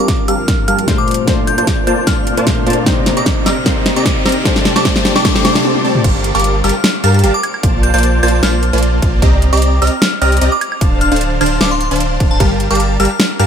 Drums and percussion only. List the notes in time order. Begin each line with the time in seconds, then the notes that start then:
0.08 kick, snare, closed hi-hat
0.28 closed hi-hat
0.48 kick, snare, closed hi-hat
0.68 closed hi-hat
0.79 closed hi-hat
0.88 kick, snare, closed hi-hat
1.08 closed hi-hat
1.11 closed hi-hat
1.14 closed hi-hat
1.28 kick, snare, closed hi-hat
1.47 closed hi-hat
1.58 closed hi-hat
1.67 kick, snare, closed hi-hat
1.87 closed hi-hat
2.07 kick, snare, closed hi-hat
2.27 closed hi-hat
2.37 closed hi-hat
2.47 kick, snare, closed hi-hat
2.67 closed hi-hat
2.70 closed hi-hat
2.73 closed hi-hat
2.86 kick, snare, closed hi-hat
3.06 snare, closed hi-hat
3.17 closed hi-hat
3.26 kick, snare, closed hi-hat
3.46 snare, closed hi-hat
3.66 kick, snare, closed hi-hat
3.86 snare, closed hi-hat
3.96 closed hi-hat
4.06 kick, snare, closed hi-hat
4.26 snare, closed hi-hat
4.29 closed hi-hat
4.32 closed hi-hat
4.45 kick, snare, closed hi-hat
4.56 snare
4.65 snare, closed hi-hat
4.76 snare, closed hi-hat
4.85 kick, snare, closed hi-hat
4.96 snare
5.05 snare, closed hi-hat
5.16 snare
5.25 kick, snare, closed hi-hat
5.36 snare
5.45 snare, closed hi-hat
5.55 snare, closed hi-hat
5.65 high tom
5.75 high tom
5.95 mid tom
6.04 kick, closed hi-hat, crash
6.24 closed hi-hat
6.35 closed hi-hat
6.40 closed hi-hat
6.44 closed hi-hat
6.64 closed hi-hat
6.69 closed hi-hat
6.84 snare, closed hi-hat
7.04 closed hi-hat
7.14 closed hi-hat
7.19 closed hi-hat
7.24 closed hi-hat
7.43 closed hi-hat, high woodblock
7.54 high woodblock
7.63 kick, closed hi-hat
7.83 closed hi-hat
7.94 closed hi-hat
7.98 closed hi-hat
8.03 closed hi-hat
8.23 closed hi-hat, high woodblock
8.28 closed hi-hat
8.43 snare, closed hi-hat
8.63 closed hi-hat
8.73 closed hi-hat
8.78 closed hi-hat
8.83 closed hi-hat
9.02 kick, closed hi-hat
9.22 kick, closed hi-hat
9.42 closed hi-hat
9.53 closed hi-hat
9.57 closed hi-hat
9.62 closed hi-hat
9.82 closed hi-hat
9.87 closed hi-hat
10.02 snare, closed hi-hat
10.22 closed hi-hat
10.32 closed hi-hat
10.37 closed hi-hat
10.41 closed hi-hat
10.61 closed hi-hat, high woodblock
10.72 high woodblock
10.81 kick, closed hi-hat
11.01 closed hi-hat
11.12 closed hi-hat
11.16 closed hi-hat
11.21 closed hi-hat
11.41 closed hi-hat, high woodblock
11.46 closed hi-hat
11.61 snare, closed hi-hat
11.81 closed hi-hat
11.91 closed hi-hat
11.96 closed hi-hat
12.00 closed hi-hat
12.20 kick, closed hi-hat
12.40 kick, closed hi-hat
12.60 closed hi-hat
12.71 closed hi-hat
12.75 closed hi-hat
12.80 closed hi-hat
13.00 closed hi-hat
13.05 closed hi-hat
13.20 snare, closed hi-hat
13.40 closed hi-hat